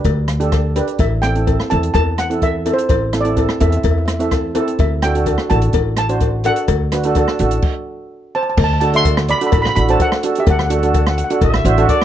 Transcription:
Already playing: D4 G4 B4
0.04 D2, kick, closed hi-hat, cowbell
0.28 cross-stick, closed hi-hat
0.40 D4 G4 A4, closed hi-hat
0.52 kick, cross-stick, closed hi-hat, cowbell
0.76 D4 G4 B4, closed hi-hat, cowbell
0.88 closed hi-hat
0.99 A1 E5, kick, closed hi-hat, cowbell
1.22 C4 E4 A4 G5, cross-stick, closed hi-hat
1.35 C4 E4 A4, closed hi-hat
1.47 C4 E4 A4, kick, closed hi-hat, cowbell
1.60 cross-stick
1.70 E2 C4 E4 A4 A5, closed hi-hat, cowbell
1.83 closed hi-hat
1.94 E2 A5, kick, closed hi-hat, cowbell
2.18 F#5, cross-stick, closed hi-hat
2.30 C4 E4 A4, closed hi-hat
2.42 E5, kick, closed hi-hat, cowbell
2.66 C4 E4 A4, closed hi-hat, cowbell
2.74 C5
2.78 closed hi-hat
2.89 A1 C5, kick, closed hi-hat, cowbell
3.13 C4 E4 A4, cross-stick, closed hi-hat
3.21 D5
3.25 C4 E4 A4, closed hi-hat
3.37 C4 E4 A4, kick, closed hi-hat, cowbell
3.49 cross-stick
3.60 E2 C4 E4 A4 E5, closed hi-hat, cowbell
3.70 E5, closed hi-hat
3.77 E5
3.83 E2 E5, kick, closed hi-hat, cowbell
3.91 E5
3.98 E5
4.06 E5, cross-stick, closed hi-hat
4.14 E5
4.19 C4 E4 A4 E5, closed hi-hat
4.31 kick, cross-stick, closed hi-hat, cowbell
4.55 C4 E4 A4, closed hi-hat, cowbell
4.68 closed hi-hat
4.79 D2 E5, kick, closed hi-hat, cowbell
5.02 D4 F#4 A4 G5, cross-stick, closed hi-hat
5.15 D4 F#4 A4, closed hi-hat
5.26 D4 F#4 A4, kick, closed hi-hat, cowbell
5.38 cross-stick
5.50 A1 D4 F#4 A4 A5, closed hi-hat, cowbell
5.62 closed hi-hat
5.73 A1, kick, closed hi-hat, cowbell
5.97 A5, cross-stick, closed hi-hat
6.09 D4 F#4 C5, closed hi-hat
6.21 kick, closed hi-hat, cowbell
6.44 D4 F#4 A4 F#5, closed hi-hat, cowbell
6.56 closed hi-hat
6.68 D2, kick, closed hi-hat, cowbell
6.92 D4 F#4 B4, cross-stick, closed hi-hat
7.04 D4 F#4 A4, closed hi-hat
7.15 D4 F#4 A4, kick, closed hi-hat, cowbell
7.28 cross-stick
7.39 A1 D4 F#4 A4, closed hi-hat
7.51 closed hi-hat
7.62 kick, crash
8.35 C5 A5
8.43 A5
8.50 A5
8.57 D2 A5, kick, crash, cowbell
8.64 A5
8.73 A5
8.81 D4 F#4 A4 A5, closed hi-hat
8.93 D4 F#4 A4 E5 C6, closed hi-hat
9.05 kick, closed hi-hat, cowbell
9.17 cross-stick
9.29 D5 B5, closed hi-hat
9.41 D4 F#4 A4, closed hi-hat
9.47 B5
9.52 A1 B5, kick, closed hi-hat, cowbell
9.62 B5, cross-stick
9.69 B5
9.76 A1 D4 F#4 A4 B5, closed hi-hat
9.88 D4 F#4 A4 C5 A5, closed hi-hat
10.00 A4 F#5, kick, closed hi-hat, cowbell
10.12 cross-stick
10.23 D4 F#4 A4, closed hi-hat
10.35 G4, closed hi-hat
10.40 E5
10.47 D2 A4 F#5, kick, closed hi-hat, cowbell
10.59 F#5, cross-stick
10.66 F#5
10.70 D4 F#4 A4 F#5, closed hi-hat
10.79 F#5
10.83 D4 F#4 A4, closed hi-hat
10.87 F#5
10.94 F#5, kick, closed hi-hat, cowbell
11.03 F#5
11.07 F#5, cross-stick
11.18 F#5, closed hi-hat
11.24 F#5
11.30 D4 F#4 A4 F#5, closed hi-hat
11.41 A1 E5, kick, closed hi-hat, cowbell
11.54 cross-stick
11.65 A1 D4 F#4 C5, closed hi-hat
11.78 D4 F#4 A4, closed hi-hat
11.87 D5, kick, closed hi-hat, cowbell

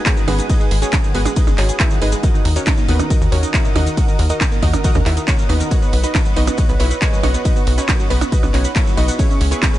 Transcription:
0.06 F#3 C#4 F#4 G#4 C#5, kick, clap, closed hi-hat, ride, maracas
0.17 D#3 D#4, maracas
0.28 G#1 G#3 B3 F#4 G#4 B4, open hi-hat, percussion blips
0.39 G#3 D#4, closed hi-hat, maracas
0.49 G#3 D#4 G#4 B4 D#5, kick, closed hi-hat, ride, maracas
0.60 G#3 G#4, maracas
0.71 G#1 G#3 G#4, open hi-hat
0.82 C#4 F#4 G#4 C#5, closed hi-hat, maracas
0.92 F#3, kick, clap, closed hi-hat, ride, percussion blips, maracas
1.04 D#3 G#4, maracas
1.15 G#1 G#3 B3 F#4 G#4 B4, open hi-hat
1.25 G#3 G#4, closed hi-hat, percussion blips, maracas
1.36 G#3 D#4 G#4 B4 D#5, kick, closed hi-hat, ride, maracas
1.47 G#1 G#3 G#4, percussion blips, maracas
1.58 G#1 G#3 C#4 F#4 G#4 C#5, clap, open hi-hat
1.69 G#4, closed hi-hat, maracas
1.80 F#3 E4 G#4 B4 E5, kick, clap, closed hi-hat, ride, maracas
1.90 D#3 G#4, maracas
2.01 G#1 G#3 D#4 G#4 B4 D#5, open hi-hat
2.12 G#3 G#4, closed hi-hat, maracas
2.23 D#3 D#4 F#4 A#4 D#5, kick, closed hi-hat, ride, maracas
2.34 D#3 D#4, maracas
2.45 D#2 D#3 D#4, open hi-hat
2.56 C#4 D#4 F#4 A#4 C#5, closed hi-hat, maracas
2.66 C#3 D#4, kick, clap, closed hi-hat, ride, percussion blips, maracas
2.77 A#2 D#4, maracas
2.89 D#2 D#3 B3 D#4 F#4 B4, open hi-hat
2.99 D#3 D#4, closed hi-hat, percussion blips, maracas
3.10 D#3 D#4 F#4 A#4 D#5, kick, closed hi-hat, ride, maracas
3.21 D#2 D#3 D#4, maracas
3.32 D#2 D#3 C#4 F#4 A#4 C#5, open hi-hat
3.43 D#4, closed hi-hat, maracas
3.54 C#3 E4 F#4 A#4 E5, kick, clap, closed hi-hat, ride, maracas
3.65 A#2 D#4, maracas
3.75 D#2 D#3 D#4 F#4 A#4 D#5, open hi-hat, percussion blips
3.86 D#3 D#4, closed hi-hat, maracas
3.97 D#3 F#4 A#4 D#5 F#5, kick, closed hi-hat, ride, maracas
4.08 D#3 A#4, maracas
4.19 D#2 D#3 A#4, open hi-hat
4.29 D#4 F#4 A#4 D#5, closed hi-hat, maracas
4.41 C#3 A#4, kick, clap, closed hi-hat, ride, percussion blips, maracas
4.52 A#2 A#4, maracas
4.62 D#2 D#3 D#4 F#4 A#4 D#5, kick, open hi-hat
4.73 D#3 A#4, closed hi-hat, percussion blips, maracas
4.84 D#3 F#4 A#4 D#5 F#5, kick, closed hi-hat, ride, maracas
4.95 D#2 D#3 A#4, percussion blips, maracas
5.06 D#2 D#3 E4 F#4 A#4 E5, clap, open hi-hat
5.17 D#4 A#4, closed hi-hat, maracas
5.28 C#3 C#4 F#4 A#4 C#5, kick, clap, closed hi-hat, ride, maracas
5.38 A#2 A#4, maracas
5.49 D#2 D#3 B3 D#4 F#4 B4, open hi-hat
5.60 D#3 A#4, closed hi-hat, maracas
5.71 B3 F#4 C#5 D#5 F#5, kick, closed hi-hat, ride, maracas
5.82 B3 B4, maracas
5.93 B1 B3 B4, open hi-hat
6.03 D#4 F#4 B4 D#5, closed hi-hat, maracas
6.15 A#3, kick, clap, closed hi-hat, ride, percussion blips, maracas
6.25 F#3 B4, maracas
6.36 B1 B3 D#4 F#4 B4 D#5, open hi-hat
6.47 B3 B4, closed hi-hat, percussion blips, maracas
6.58 B3 F#4 C#5 D#5 F#5, kick, closed hi-hat, ride, maracas
6.69 B1 B3 B4, maracas
6.79 B1 B3 E4 B4 C#5 E5, open hi-hat
6.90 B4, closed hi-hat, maracas
7.01 A#3 G#4 C#5 D#5 G#5, kick, clap, closed hi-hat, ride, maracas
7.12 F#3 B4, maracas
7.23 B1 B3 F#4 C#5 D#5 F#5, open hi-hat, percussion blips
7.34 B3 B4, closed hi-hat, maracas
7.45 B3 D#4 F#4 B4 D#5, kick, closed hi-hat, ride, maracas
7.56 B3 F#4, maracas
7.67 B1 B3 F#4, open hi-hat
7.78 C#4 D#4 F#4 B4 C#5, closed hi-hat, maracas
7.89 A#3 F#4, kick, clap, closed hi-hat, ride, percussion blips, maracas
7.99 F#3 F#4, maracas
8.10 B1 B3 D#4 F#4 B4, open hi-hat
8.21 B3 F#4, closed hi-hat, percussion blips, maracas
8.32 B3 D#4 F#4 B4 D#5, kick, closed hi-hat, ride, maracas
8.43 B1 B3 F#4, percussion blips, maracas
8.54 B1 B3 C#4 D#4 F#4 C#5, clap, open hi-hat
8.64 F#4 B4, closed hi-hat, maracas
8.75 A#3 E4 B4 C#5 E5, kick, clap, closed hi-hat, ride, maracas
8.86 F#3 F#4, maracas
8.97 B1 B3 D#4 F#4 B4 D#5, open hi-hat
9.08 B3 F#4, closed hi-hat, maracas
9.19 C#4 E4 G#4 C#5, kick, closed hi-hat, ride, maracas
9.30 C#4, maracas
9.40 C#2 C#4, open hi-hat
9.51 B3 E4 G#4 B4 C#5, closed hi-hat, maracas
9.62 B3 C#4, kick, clap, closed hi-hat, ride, percussion blips, maracas
9.73 G#3 C#4, maracas

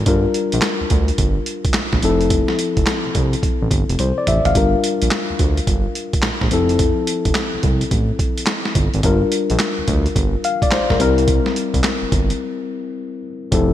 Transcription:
0.06 G1 G3 D4 F4 A#4, kick, closed hi-hat
0.34 closed hi-hat
0.52 A#1, closed hi-hat
0.61 snare, clap, closed hi-hat
0.81 D2
0.90 D2, kick, closed hi-hat
1.08 closed hi-hat
1.18 G1, kick, closed hi-hat
1.46 closed hi-hat
1.65 kick, closed hi-hat
1.74 A#1, snare, clap, closed hi-hat
1.93 A#1, kick, snare
2.02 F1 F3 C4 E4 A4, closed hi-hat
2.21 closed hi-hat
2.30 kick, closed hi-hat
2.48 snare
2.59 closed hi-hat
2.77 F1, kick, closed hi-hat
2.86 snare, clap, closed hi-hat
3.06 C2
3.15 C2, kick, closed hi-hat
3.33 closed hi-hat
3.43 kick, closed hi-hat
3.62 A1
3.71 G1, kick, closed hi-hat
3.89 F1, closed hi-hat
3.99 C2 C5, closed hi-hat, high tom
4.18 D5
4.27 A1 E5, closed hi-hat, mid tom
4.45 G#1 F5, closed hi-hat, floor tom
4.55 G1 G3 D4 F4 A#4, kick, closed hi-hat
4.84 closed hi-hat
5.02 A#1, closed hi-hat
5.11 snare, clap, closed hi-hat
5.30 D2
5.39 D2, kick, closed hi-hat
5.57 closed hi-hat
5.67 G1, kick, closed hi-hat
5.95 closed hi-hat
6.13 kick, closed hi-hat
6.22 A#1, snare, clap, closed hi-hat
6.41 A#1, kick, snare
6.51 F1 F3 C4 E4 A4, closed hi-hat
6.69 closed hi-hat
6.79 kick, closed hi-hat
7.07 closed hi-hat
7.25 F1, kick, closed hi-hat
7.35 snare, clap, closed hi-hat
7.54 C2
7.63 C2, kick, closed hi-hat
7.81 closed hi-hat
7.91 A1, kick, closed hi-hat
8.19 kick, closed hi-hat
8.38 closed hi-hat
8.46 snare, clap, closed hi-hat
8.65 snare
8.75 G1, kick, closed hi-hat
8.94 G#1, closed hi-hat
9.03 G1 G3 D4 F4 A#4, kick, closed hi-hat
9.32 closed hi-hat
9.50 A#1, closed hi-hat
9.59 snare, clap, closed hi-hat
9.78 D2
9.88 D2, kick, closed hi-hat
10.06 closed hi-hat
10.16 G1, kick, closed hi-hat
10.44 F5, closed hi-hat
10.62 D5, kick, closed hi-hat
10.71 A#1 C5, snare, clap, closed hi-hat
10.90 A#1 A#4, kick, snare
10.99 C2 G3 C4 E4 A#4, closed hi-hat
11.18 closed hi-hat
11.28 kick, closed hi-hat
11.46 snare
11.56 closed hi-hat
11.74 C2, kick, closed hi-hat
11.84 snare, clap, closed hi-hat
12.02 G1
12.12 G1, kick, closed hi-hat
12.30 closed hi-hat
13.52 F1 F3 C4 E4 A4, kick, closed hi-hat

